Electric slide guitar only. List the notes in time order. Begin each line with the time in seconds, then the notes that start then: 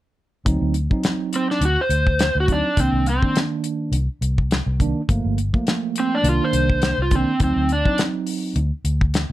1.36 C4
1.51 D4
1.65 F#4
1.81 C5
2.40 F#4
2.52 D4
2.80 C4
3.10 C4
6.00 C4
6.15 D4
6.29 F4
6.44 C5
7.02 F4
7.16 C4
7.44 C4
7.72 D4